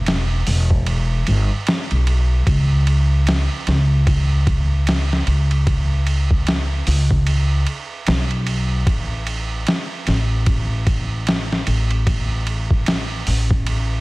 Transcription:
Already playing: upright bass E1
0.06 snare, ride
0.47 upright bass E1, open hi-hat
0.70 kick
0.86 ride
1.27 upright bass G1, ride
1.67 snare, ride
1.91 upright bass B1, ride
2.07 ride
2.47 upright bass C#2, kick, ride
2.87 ride
3.27 snare, ride
3.67 upright bass C#2, snare, ride
4.07 kick, ride
4.47 kick, ride
4.87 snare, ride
5.13 snare
5.27 upright bass C#2, ride
5.51 ride
5.67 kick, ride
6.07 ride
6.31 kick
6.47 snare, ride
6.87 upright bass C#2, open hi-hat
7.11 kick
7.27 ride
7.67 ride
8.07 upright bass B1, snare, ride
8.31 ride
8.47 ride
8.87 upright bass A1, kick, ride
9.27 ride
9.67 snare, ride
10.07 upright bass A1, snare, ride
10.46 kick, ride
10.87 kick, ride
11.27 snare, ride
11.52 snare
11.67 upright bass A1, ride
11.91 ride
12.07 kick, ride
12.47 ride
12.71 kick
12.86 snare, ride
13.27 upright bass A1, open hi-hat
13.51 kick
13.66 ride

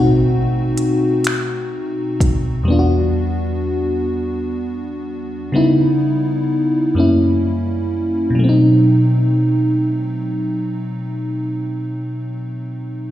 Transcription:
Already playing: fm electric piano B2 A3 C4 D#4 F#4
0.77 closed hi-hat
1.24 finger snap, closed hi-hat
2.20 kick, closed hi-hat
2.64 fm electric piano E2 G3
2.68 fm electric piano B3 D4
2.72 fm electric piano F4
2.79 fm electric piano F#4
5.52 fm electric piano C#3 G3 B3 D#4
5.56 fm electric piano E4
6.95 fm electric piano F#2 G3 A#3 C#4
7.00 fm electric piano E4
8.30 fm electric piano B2
8.35 fm electric piano F#3
8.39 fm electric piano A3
8.44 fm electric piano C4
8.49 fm electric piano D#4

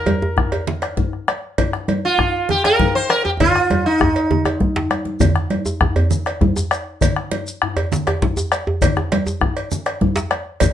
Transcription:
Already playing: sitar A#4
0.06 cowbell, djembe slap, djembe tone, high conga
0.22 djembe tone
0.37 bombo rim, bombo low, djembe bass
0.52 cowbell, djembe tone
0.67 djembe slap, low conga
0.82 bombo rim, cowbell, djembe slap
0.97 bombo rim, bombo low, djembe tone, high conga, djembe bass
1.13 bombo rim
1.28 bombo rim, cowbell, high conga
1.58 bombo low, cowbell, djembe bass, low conga
1.73 bombo rim, djembe slap
1.88 cowbell, djembe slap, high conga, djembe tone
2.05 sitar F4
2.18 bombo rim, bombo low, djembe bass
2.49 sitar G4, djembe tone, low conga
2.64 sitar A#4, bombo rim, cowbell, djembe slap
2.79 bombo rim, bombo low, high conga, djembe tone, djembe bass
2.95 sitar C5, bombo rim
3.10 sitar A#4, bombo rim, cowbell, high conga
3.25 sitar G4, djembe tone
3.40 sitar F4, bombo low, cowbell, djembe slap, djembe tone, low conga, djembe bass
3.56 bombo rim, djembe slap
3.70 bombo rim, cowbell, djembe tone, high conga
3.86 sitar D#4, bombo rim, high conga
4.00 bombo rim, bombo low, djembe tone, djembe bass
4.16 cowbell, djembe slap
4.31 djembe tone, low conga
4.45 bombo rim, cowbell, djembe slap, djembe tone, high conga
4.60 bombo rim, bombo low, high conga, djembe bass
4.75 bombo rim, djembe slap, djembe bass, low conga
4.91 bombo rim, cowbell, djembe slap, high conga
5.05 djembe slap, high conga
5.20 bombo low, cowbell, low conga, djembe bass, shekere
5.36 bombo rim, djembe slap
5.50 cowbell, djembe slap, high conga, djembe tone
5.66 djembe tone, shekere
5.81 bombo rim, bombo low, djembe tone, djembe bass
5.96 cowbell, djembe bass
6.11 low conga, shekere
6.26 bombo rim, cowbell, djembe slap
6.41 bombo rim, bombo low, djembe tone, high conga, djembe bass
6.56 bombo rim, djembe tone, shekere
6.71 bombo rim, cowbell, high conga, shekere
7.01 bombo low, cowbell, djembe bass, low conga, shekere
7.16 bombo rim, djembe slap
7.31 cowbell, djembe slap, high conga, djembe tone
7.47 shekere
7.62 bombo rim, djembe bass
7.76 cowbell, djembe tone
7.92 djembe slap, low conga, shekere
8.07 bombo rim, cowbell, djembe slap, djembe tone
8.22 bombo rim, bombo low, djembe slap, high conga, djembe bass
8.37 bombo rim, djembe tone, shekere
8.52 bombo rim, cowbell, high conga, shekere
8.67 djembe tone
8.82 bombo low, cowbell, djembe slap, djembe bass, low conga, shekere
8.97 bombo rim, djembe slap, djembe tone
9.12 cowbell, djembe slap, djembe tone, high conga
9.26 djembe tone, shekere
9.41 bombo rim, bombo low, djembe bass
9.57 cowbell
9.72 low conga, shekere
9.86 bombo rim, cowbell, djembe slap
10.01 bombo rim, bombo low, high conga, djembe tone, djembe bass
10.16 bombo rim, djembe slap, shekere
10.31 bombo rim, cowbell, high conga
10.60 bombo rim, bombo low, cowbell, djembe tone, djembe bass, low conga, shekere

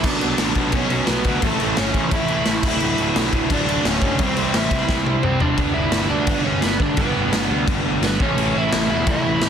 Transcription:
0.03 picked electric bass B1, distorted electric guitar B2 F#3 B3, overdriven electric guitar D4 D5, kick, crash
0.20 picked electric bass B1, distorted electric guitar B2 F#3 B3, crash
0.38 picked electric bass A1, distorted electric guitar B2 F#3 B3, snare, crash
0.55 picked electric bass B1, distorted electric guitar B2 F#3 B3, kick, crash
0.72 picked electric bass B1, distorted electric guitar B2 F#3 B3, overdriven electric guitar C#4 C#5, kick, crash
0.90 distorted electric guitar B2 F#3 B3, crash
1.07 picked electric bass B1, distorted electric guitar B2 F#3 B3, overdriven electric guitar B3 B4, snare, crash
1.24 picked electric bass D2, distorted electric guitar B2 F#3 B3, kick, crash
1.42 picked electric bass A1, distorted electric guitar A2 E3 A3, overdriven electric guitar A3 A4, kick, crash
1.60 picked electric bass A1, distorted electric guitar A2 E3 A3, crash
1.76 picked electric bass G1, distorted electric guitar A2 E3 A3, overdriven electric guitar C#4 C#5, snare, crash
1.94 picked electric bass A1, distorted electric guitar A2 E3 A3, kick, crash
2.11 picked electric bass A1, distorted electric guitar A2 E3 A3, overdriven electric guitar E4, kick, crash
2.16 overdriven electric guitar E5
2.28 distorted electric guitar A2, crash
2.32 distorted electric guitar E3 A3
2.45 picked electric bass A1, distorted electric guitar A2, snare, crash
2.50 distorted electric guitar E3 A3
2.63 picked electric bass D1, distorted electric guitar D2 A2 D3, overdriven electric guitar E4, kick, crash
2.68 overdriven electric guitar E5
2.80 picked electric bass D1, distorted electric guitar D2 A2 D3, crash
2.98 picked electric bass D1, distorted electric guitar D2 A2 D3, crash
3.16 picked electric bass B1, distorted electric guitar D2 A2 D3, snare, crash
3.33 picked electric bass D1, distorted electric guitar D2 A2 D3, kick, crash
3.50 picked electric bass D1, distorted electric guitar D2 A2 D3, overdriven electric guitar D4 D5, kick, crash
3.68 distorted electric guitar D2 A2 D3, crash
3.85 picked electric bass D1, distorted electric guitar D2 A2 D3, overdriven electric guitar C#4, snare, crash
3.90 overdriven electric guitar C#5
4.01 picked electric bass F#1, distorted electric guitar D2 A2 D3, kick, crash
4.19 picked electric bass C2, distorted electric guitar C3 G3 C4, kick, crash
4.23 overdriven electric guitar C4 C5
4.37 picked electric bass C2, distorted electric guitar C3 G3 C4, crash
4.53 picked electric bass A1, distorted electric guitar C3 G3 C4, overdriven electric guitar E4, snare, crash
4.59 overdriven electric guitar E5
4.71 picked electric bass C2, distorted electric guitar C3 G3 C4, kick, crash
4.88 picked electric bass C2, distorted electric guitar C3 G3 C4, kick, snare
5.06 distorted electric guitar C3 G3 C4, high tom
5.23 picked electric bass C2, distorted electric guitar C3 G3 C4, overdriven electric guitar C4 C5, mid tom
5.40 picked electric bass E1, distorted electric guitar C3 G3 C4, overdriven electric guitar D4 D5, floor tom
5.57 picked electric bass G1, distorted electric guitar G2 D3 G3 B3 D4 G4, kick, crash
5.74 picked electric bass G1, overdriven electric guitar E4 E5
5.92 picked electric bass G1, snare, crash
6.10 picked electric bass D2, overdriven electric guitar D4 D5
6.27 picked electric bass G1, kick, crash
6.44 picked electric bass G1, overdriven electric guitar C#4 C#5
6.62 picked electric bass G1, overdriven electric guitar B3 B4, snare, crash
6.80 picked electric bass G1, overdriven electric guitar D4 D5, kick
6.97 picked electric bass G1, distorted electric guitar G2 D3, overdriven electric guitar B3 B4, kick, crash
7.01 distorted electric guitar G3 B3 D4 G4
7.16 picked electric bass G1
7.33 picked electric bass G1, snare, crash
7.51 picked electric bass D2
7.68 picked electric bass G1, kick, crash
7.85 picked electric bass G1
8.02 picked electric bass G1, overdriven electric guitar B3, snare, crash
8.06 overdriven electric guitar B4
8.20 picked electric bass A1, distorted electric guitar A2 E3 A3 C#4 E4, overdriven electric guitar C#4 C#5, kick
8.24 distorted electric guitar A4
8.37 picked electric bass A1, crash
8.56 picked electric bass A1, overdriven electric guitar E4 E5
8.72 picked electric bass A1, snare, crash
8.89 picked electric bass E2, overdriven electric guitar E4 E5
9.07 picked electric bass A1, overdriven electric guitar E4, kick, crash
9.11 overdriven electric guitar E5
9.26 picked electric bass A1
9.41 picked electric bass A1, snare, crash

